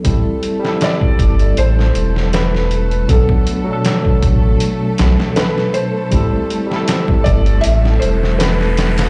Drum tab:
HH |x-x-x-xxx-x-x-xx|x-x-x-x-x-x-x-x-|x-x-x-xxx-x-x-xx|
SD |---oo----o-ooo--|----o-----oooo--|---oo----o-ooooo|
BD |o----oo---------|oo---oo---------|o----oo---------|